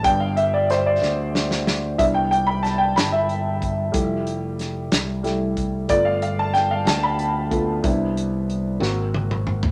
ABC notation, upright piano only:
X:1
M:6/8
L:1/16
Q:3/8=62
K:C
V:1 name="Upright piano"
g f e d c d4 z3 | e g g b a g b e4- e- | e4- e z6 z | d f f a g f a b4- b- |
b4- b z6 z |]
V:2 name="Upright piano"
[G,B,D]2 z8 z2 | [E,B,D]12 | [G,A,E]2 z6 [G,A,E]2 z2 | [A,B,F]2 z8 [A,B,F]2 |
[B,DE]2 z4 [_B,C_G]2 z4 |]